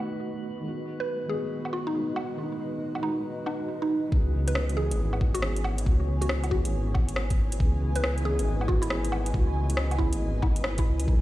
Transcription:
Already playing: felt piano D#3 A3 B3 D#4 F#4, ambient pad A3 F#4 B4 D#5, synth texture B3 B4, synth pluck F#4
0.59 felt piano D#3 G#3, ambient pad G#3 F#4 D#5
0.65 felt piano B3 F#4
1.00 synth pluck B4
1.26 felt piano D#3 G#3, synth pluck G#4
1.31 felt piano B3 F#4
1.65 low woodblock
1.73 synth pluck F#4
1.87 synth pluck D#4
1.93 felt piano D#3 G#3 B3 F#4
2.16 low woodblock
2.34 felt piano D#3 G#3
2.40 felt piano B3 D#4
2.95 low woodblock
2.99 felt piano D#3 G#3, synth pluck D#4
3.04 felt piano B3 F#4
3.46 synth pluck D#4, low woodblock
3.82 synth pluck D#4
4.08 felt piano E3 B3, ambient pad E4 B4 C#5 G#5
4.12 detuned saw bass C#2, felt piano C#4 G#4, kick
4.48 synth pluck B4, closed hi-hat
4.55 cross-stick
4.69 felt piano E3, closed hi-hat
4.76 felt piano B3 C#4, synth pluck G#4
4.81 felt piano G#4
4.91 detuned saw bass G#1, closed hi-hat
5.13 low woodblock
5.21 kick
5.34 synth pluck F#4, closed hi-hat
5.40 felt piano E3 B3 C#4, cross-stick
5.45 felt piano G#4
5.56 closed hi-hat
5.64 low woodblock
5.78 felt piano E3, closed hi-hat
5.85 detuned saw bass C#2, felt piano B3 C#4, kick
5.90 felt piano F#4
6.21 synth pluck F#4, closed hi-hat
6.29 cross-stick
6.44 felt piano E3, closed hi-hat, low woodblock
6.50 felt piano B3 C#4, synth pluck F#4, kick
6.55 felt piano G#4
6.65 detuned saw bass G#1, closed hi-hat
6.94 kick, low woodblock
7.09 closed hi-hat
7.16 cross-stick
7.30 kick, closed hi-hat
7.52 closed hi-hat
7.56 detuned saw bass C#2, felt piano E3 B3, ambient pad D#5, kick
7.62 felt piano C#4 G#4
7.96 synth pluck B4, closed hi-hat
8.04 cross-stick
8.18 closed hi-hat
8.22 felt piano E3 B3, synth pluck G#4
8.27 felt piano C#4 G#4
8.39 detuned saw bass G#1, closed hi-hat
8.61 low woodblock
8.68 synth pluck F#4, kick
8.82 synth pluck E4, closed hi-hat
8.88 felt piano E3 B3 C#4 G#4, cross-stick
9.05 closed hi-hat
9.12 low woodblock
9.26 closed hi-hat
9.31 detuned saw bass C#2, felt piano E3 B3, kick
9.36 felt piano C#4 F#4
9.70 closed hi-hat
9.77 cross-stick
9.91 closed hi-hat, low woodblock
9.96 felt piano E3 B3, synth pluck E4, kick
10.01 felt piano C#4 G#4
10.13 detuned saw bass G#1, closed hi-hat
10.42 synth pluck E4, kick, low woodblock
10.56 closed hi-hat
10.64 cross-stick
10.78 synth pluck E4, kick, closed hi-hat
10.86 detuned saw bass C#2
11.00 closed hi-hat
11.04 felt piano F#3 B3
11.08 detuned saw bass B1, felt piano D#4, ambient pad F#4 F#5, kick
11.12 felt piano A4

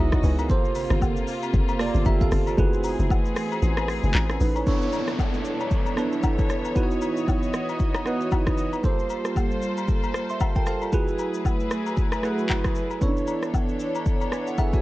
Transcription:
Already playing: log drum bass C#2, string section E3 B3 F#4 D#5, tine electric piano B3 D#4 E4 F#4 C#5 E5
0.00 tine electric piano G#4
0.12 kick, cross-stick, shaker
0.23 log drum bass C#2, tine electric piano B4 G#5, open hi-hat, shaker
0.38 tine electric piano A#4 F#5, high agogo, shaker
0.49 log drum bass G1, string section C3 A#3 C4 F4, tine electric piano A#3 F4 G4 A4 C5, kick, shaker
0.65 shaker
0.75 open hi-hat, high agogo, shaker
0.90 log drum bass G1, cross-stick, shaker
1.02 kick, low woodblock, shaker
1.17 shaker
1.27 open hi-hat, shaker
1.43 high agogo, shaker
1.54 log drum bass F#1, kick, shaker
1.69 high agogo, shaker
1.79 tine electric piano A#3 F4 G4 A4 D5, cross-stick, open hi-hat, shaker
1.95 log drum bass G1, shaker
2.05 log drum bass G1, tine electric piano G4 E5, kick, high agogo, shaker
2.21 tine electric piano A4 F5, kick, shaker
2.32 log drum bass G1, cross-stick, open hi-hat, shaker
2.47 tine electric piano F4 D5, high agogo, shaker
2.57 log drum bass F#1, string section E3 B3 G#4, tine electric piano A3 E4 F#4 G#4 B4, kick, shaker
2.73 shaker
2.84 open hi-hat, high agogo, shaker
2.99 log drum bass F#1, shaker
3.10 kick, low woodblock, shaker
3.25 shaker
3.36 cross-stick, open hi-hat, shaker
3.52 high agogo, shaker
3.62 log drum bass A1, shaker
3.77 cross-stick, high agogo, shaker
3.88 cross-stick, open hi-hat, shaker
4.03 log drum bass F#1, shaker
4.14 log drum bass A1, clap, high agogo, shaker
4.30 tine electric piano C#4 A4, cross-stick, shaker
4.40 log drum bass A1, tine electric piano D#4 B4, open hi-hat, shaker
4.56 tine electric piano E4 C#5, high agogo, shaker
4.66 string section E3 B3 D4 A4 C#5, tine electric piano B3 D4 E4 A4 C#5, kick, downlifter, shaker
4.82 shaker
4.93 high agogo, shaker
5.08 cross-stick, shaker
5.19 kick, low woodblock, shaker
5.34 shaker
5.45 shaker
5.60 high agogo, shaker
5.71 kick, shaker
5.86 high agogo, shaker
5.96 tine electric piano B3 D4 E4 A4 B4, cross-stick, shaker
6.12 shaker
6.23 kick, high agogo, low woodblock, shaker
6.38 kick, shaker
6.49 cross-stick, shaker
6.64 high agogo, shaker
6.75 tine electric piano B3 D#4 E4 F#4 B4, string section F#4 D#5, kick, shaker
6.83 tine electric piano C#5
6.91 shaker
7.01 high agogo, shaker
7.17 shaker
7.28 kick, low woodblock, shaker
7.43 shaker
7.54 cross-stick, shaker
7.69 high agogo, shaker
7.80 kick, shaker
7.95 cross-stick, high agogo, shaker
8.05 tine electric piano B3 D#4 E4 F#4 B4, cross-stick, shaker
8.21 shaker
8.32 kick, high agogo, low woodblock, shaker
8.47 kick, cross-stick, shaker
8.58 shaker
8.73 high agogo, shaker
8.83 string section G3 A#3 F4 A4 C5, tine electric piano A#3 F4 G4 A4 C5, kick, shaker
8.99 shaker
9.10 high agogo, shaker
9.25 cross-stick, shaker
9.36 kick, low woodblock, shaker
9.51 shaker
9.62 shaker
9.78 high agogo, shaker
9.88 kick, shaker
10.03 high agogo, shaker
10.14 cross-stick, shaker
10.29 tine electric piano E5 C6, shaker
10.40 tine electric piano C5 A5, kick, high agogo, low woodblock, shaker
10.56 tine electric piano A#4 G5, kick, shaker
10.66 tine electric piano A4 F5, cross-stick, shaker
10.82 tine electric piano F4 D5, high agogo, shaker
10.92 string section F#3 A3 E4 G#4 B4, tine electric piano A3 E4 F#4 G#4 B4, kick, shaker
11.08 shaker
11.19 high agogo, shaker
11.34 shaker
11.45 kick, low woodblock, shaker
11.60 shaker
11.71 cross-stick, shaker
11.86 high agogo, shaker
11.97 kick, shaker
12.12 cross-stick, high agogo, shaker
12.22 tine electric piano A3 E4 F#4 G#4 B4, cross-stick, shaker
12.38 shaker
12.49 kick, clap, high agogo, low woodblock, shaker
12.64 kick, cross-stick, shaker
12.75 shaker
12.91 high agogo, shaker
13.01 string section E3 B3 D4 A4 C#5, tine electric piano B3 C#4 E4 A4 C#5, kick, shaker
13.07 tine electric piano D4
13.17 shaker
13.27 high agogo, shaker
13.43 cross-stick, shaker
13.54 kick, low woodblock, shaker
13.69 shaker
13.80 shaker
13.95 high agogo, shaker
14.06 kick, shaker
14.21 high agogo, shaker
14.32 tine electric piano B4 G#5, cross-stick, shaker
14.47 tine electric piano A4 F#5, shaker
14.58 tine electric piano G#4 E5, kick, high agogo, low woodblock, shaker
14.73 tine electric piano F#4 D5, kick, shaker

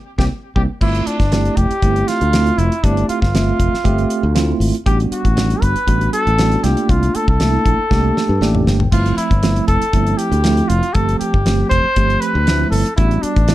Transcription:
0.18 fingered electric bass C2, tine electric piano G3 A#3 C4, trumpet G4, kick, snare
0.55 fingered electric bass C2, tine electric piano G3 A#3 C4, trumpet G4, kick
0.81 fingered electric bass G1, tine electric piano A3 C4 E4 F4, trumpet E4, kick, crash
0.95 closed hi-hat
1.07 trumpet D4, muted fingered electric bass stroke, closed hi-hat
1.20 fingered electric bass G1, kick, snare, closed hi-hat
1.32 tine electric piano A3 C4 E4 G4, snare, closed hi-hat
1.45 closed hi-hat
1.56 fingered electric bass F1, trumpet G4, kick, closed hi-hat
1.71 muted fingered electric bass stroke, closed hi-hat
1.82 fingered electric bass G1, tine electric piano A3 C4 E4 G4, kick, closed hi-hat
1.96 closed hi-hat
2.08 trumpet F4, snare, closed hi-hat
2.21 fingered electric bass D2, closed hi-hat
2.33 tine electric piano A3 C4 E4 F4, snare, closed hi-hat
2.46 closed hi-hat
2.58 fingered electric bass F1, trumpet E4, closed hi-hat
2.72 closed hi-hat
2.83 fingered electric bass G1, tine electric piano A3 C4 E4 G4, trumpet D4, kick, closed hi-hat
2.97 closed hi-hat
3.09 trumpet F4, muted fingered electric bass stroke, closed hi-hat
3.22 fingered electric bass G1, trumpet F4, kick, snare
3.34 tine electric piano A3 C4 F4 E5, snare, closed hi-hat
3.59 fingered electric bass F1, kick, closed hi-hat
3.73 muted fingered electric bass stroke, snare
3.84 fingered electric bass G1, tine electric piano A3 C4 G4 E5, kick, closed hi-hat
3.98 closed hi-hat
4.10 closed hi-hat
4.23 fingered electric bass D2
4.35 tine electric piano A3 C4 E4 F4, snare, closed hi-hat
4.60 fingered electric bass G#1, open hi-hat
4.75 closed hi-hat
4.86 fingered electric bass A1, tine electric piano G3 B3 D4 F#4, trumpet G4, kick, closed hi-hat
5.00 closed hi-hat
5.11 trumpet F#4, muted fingered electric bass stroke, closed hi-hat
5.25 fingered electric bass A1, kick, closed hi-hat
5.36 tine electric piano G3 B3 D4 F#4, snare, closed hi-hat
5.50 closed hi-hat
5.61 fingered electric bass G1, trumpet B4, kick, closed hi-hat
5.76 muted fingered electric bass stroke, closed hi-hat
5.87 fingered electric bass A1, tine electric piano G3 B3 D4 F#4, kick, closed hi-hat
6.01 closed hi-hat
6.13 trumpet A4, closed hi-hat
6.27 fingered electric bass A1, closed hi-hat
6.39 tine electric piano G3 B3 D4 F#4, snare, closed hi-hat
6.52 closed hi-hat
6.63 fingered electric bass C2, tine electric piano A3 A#3 D4 F4, trumpet G4, snare, closed hi-hat
6.77 closed hi-hat
6.89 fingered electric bass C2, trumpet F4, kick, closed hi-hat
7.03 closed hi-hat
7.15 trumpet A4, muted fingered electric bass stroke, closed hi-hat
7.28 fingered electric bass C2, trumpet A4, kick
7.40 tine electric piano A3 A#3 D4 E4, snare, closed hi-hat
7.65 fingered electric bass A#1, kick, closed hi-hat
7.79 muted fingered electric bass stroke
7.91 fingered electric bass C2, tine electric piano A3 A#3 D4 G4, kick, snare
8.17 snare
8.29 fingered electric bass G2
8.41 fingered electric bass A1, tine electric piano A3 A#3 D4 G4 D5, snare
8.55 mid tom
8.67 fingered electric bass G1, tine electric piano G5, snare
8.80 floor tom
8.92 fingered electric bass G1, tine electric piano F3 A3 C4 E4, trumpet F4, kick, closed hi-hat, crash
9.06 closed hi-hat
9.17 trumpet E4, muted fingered electric bass stroke, closed hi-hat
9.31 fingered electric bass G1, kick, closed hi-hat
9.43 tine electric piano F3 A3 C4 E4, snare, closed hi-hat
9.56 closed hi-hat
9.67 fingered electric bass F1, trumpet A4, kick, closed hi-hat
9.81 muted fingered electric bass stroke, closed hi-hat
9.93 fingered electric bass G1, tine electric piano F3 A3 C4 E4, kick, closed hi-hat
10.07 closed hi-hat
10.18 trumpet G4, closed hi-hat
10.32 fingered electric bass D2, closed hi-hat
10.44 tine electric piano F3 A3 C4 E4, snare, closed hi-hat
10.57 closed hi-hat
10.68 fingered electric bass F1, trumpet F4, closed hi-hat
10.83 closed hi-hat
10.94 fingered electric bass G1, tine electric piano F3 A3 C4 G4, trumpet A4, kick, closed hi-hat
11.09 closed hi-hat
11.19 trumpet G4, muted fingered electric bass stroke, closed hi-hat
11.34 fingered electric bass G1, kick
11.46 tine electric piano F3 A3 C4 G4, snare, closed hi-hat
11.69 fingered electric bass F1, trumpet C5, kick, closed hi-hat
11.84 muted fingered electric bass stroke
11.96 fingered electric bass G1, tine electric piano F3 A3 C4 G4, kick, closed hi-hat
12.10 closed hi-hat
12.20 trumpet B4, closed hi-hat
12.35 fingered electric bass D2
12.47 tine electric piano F3 A3 C4 E4, snare, closed hi-hat
12.70 fingered electric bass G1, trumpet A4, open hi-hat
12.86 closed hi-hat
12.96 fingered electric bass A1, tine electric piano G3 B3 D4 F#4, trumpet E4, kick, closed hi-hat
13.11 closed hi-hat
13.22 trumpet D4, muted fingered electric bass stroke, closed hi-hat
13.36 fingered electric bass A1, kick, closed hi-hat
13.48 tine electric piano G3 B3 D4 E4, snare, closed hi-hat

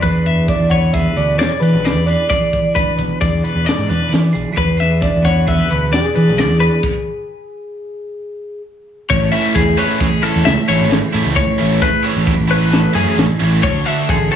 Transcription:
0.03 fingered electric bass E2, clean electric guitar E3 B3 D4 B4, kick, closed hi-hat
0.07 clean electric guitar G#4
0.26 clean electric guitar G#4 E5, closed hi-hat
0.48 clean electric guitar D4 D5, kick, closed hi-hat
0.60 fingered electric bass E2
0.70 clean electric guitar B3 C#5 F#5, kick, closed hi-hat
0.93 clean electric guitar G#4 B4 E5, kick, closed hi-hat
1.16 fingered electric bass D2, clean electric guitar B2 D5, closed hi-hat
1.38 fingered electric bass E2, clean electric guitar G#4 C#5 D5, snare, closed hi-hat
1.60 fingered electric bass E3, clean electric guitar D4 B4, closed hi-hat
1.74 fingered electric bass B1
1.83 clean electric guitar E3 G#4 D5, snare, closed hi-hat
1.95 fingered electric bass E2
2.06 clean electric guitar G#4 B4 D5, snare, closed hi-hat
2.29 clean electric guitar E3 G#4 D5, kick, closed hi-hat
2.52 clean electric guitar G#4, kick, closed hi-hat
2.75 clean electric guitar D4 B4, kick, closed hi-hat
2.98 fingered electric bass B1, clean electric guitar B3, kick, closed hi-hat
3.20 fingered electric bass E2, clean electric guitar G#4 D5, kick, snare, closed hi-hat
3.43 clean electric guitar B2 B4, closed hi-hat
3.55 fingered electric bass E2
3.65 clean electric guitar D5, closed hi-hat
3.69 snare
3.78 fingered electric bass G#2
3.87 fingered electric bass E2, clean electric guitar D4 B4, closed hi-hat
3.91 snare
4.08 clean electric guitar E3 D5
4.13 fingered electric bass E3, snare, closed hi-hat
4.33 fingered electric bass B1, clean electric guitar G#4, closed hi-hat
4.52 clean electric guitar E3 G#4
4.57 fingered electric bass E2, clean electric guitar B4, kick, closed hi-hat
4.77 clean electric guitar G#4 E5, snare, closed hi-hat
5.01 clean electric guitar D4 D5, kick, snare, closed hi-hat
5.15 fingered electric bass E2
5.23 clean electric guitar B3 C#5 F#5, kick, snare, closed hi-hat
5.47 clean electric guitar G#4 B4 E5, kick, closed hi-hat
5.68 fingered electric bass D2, clean electric guitar B2 B4, closed hi-hat
5.92 fingered electric bass E2, clean electric guitar D4 G#4 D5, snare, closed hi-hat
6.15 fingered electric bass E3, clean electric guitar D4 B4, closed hi-hat
6.28 fingered electric bass B1
6.38 clean electric guitar E3 D4 D5, snare, closed hi-hat
6.49 fingered electric bass E2
6.60 clean electric guitar D4 B4, closed hi-hat
6.83 kick, crash
9.10 fingered electric bass A1, clean electric guitar A2 C#5, kick, crash
9.32 overdriven electric guitar E3 A3 C#4 E4, clean electric guitar E4 E5, ride
9.55 fingered electric bass E2, clean electric guitar G#4, kick, ride
9.78 overdriven electric guitar E3 A3 C#4 E4, clean electric guitar B4 C#5, ride
10.00 clean electric guitar E3 G#4, kick, snare, ride
10.22 overdriven electric guitar E3 A3 C#4 E4, clean electric guitar E4 A4, ride
10.35 fingered electric bass E2
10.45 fingered electric bass C#2, clean electric guitar A3 E5, snare, ride
10.68 fingered electric bass A1, overdriven electric guitar E3 A3 C#4 E4, clean electric guitar G#4 C#5, snare, ride
10.81 fingered electric bass G#1
10.90 clean electric guitar A2, snare, ride
11.13 fingered electric bass A2, overdriven electric guitar E3 A3 C#4 E4, clean electric guitar E4, snare, ride
11.25 fingered electric bass C#2
11.36 clean electric guitar A2 C#5, kick, ride
11.58 fingered electric bass A1, overdriven electric guitar E3 A3 C#4 E4, clean electric guitar E4, ride
11.82 clean electric guitar G#4 B4, kick, ride
12.03 overdriven electric guitar E3 A3 C#4 E4, clean electric guitar C#5, ride
12.16 fingered electric bass A1
12.27 clean electric guitar E3, kick, ride
12.38 fingered electric bass A1
12.48 overdriven electric guitar E3 A3 C#4 E4, clean electric guitar B4, ride
12.52 clean electric guitar E4
12.72 clean electric guitar A3, snare, ride
12.94 fingered electric bass F#2, overdriven electric guitar E3 A3 C#4 E4, clean electric guitar G#4, ride
13.18 fingered electric bass A1, clean electric guitar A2, snare, ride
13.40 fingered electric bass A1, overdriven electric guitar E3 A3 C#4 E4, clean electric guitar E4, ride
13.63 fingered electric bass D2, clean electric guitar D3 C#5, kick, crash
13.85 overdriven electric guitar D3 A3 D4 F#4, clean electric guitar F#4 E5, ride
14.09 fingered electric bass A1, clean electric guitar G#4 A4, kick, ride
14.31 overdriven electric guitar D3 A3 D4 F#4, clean electric guitar A4, ride

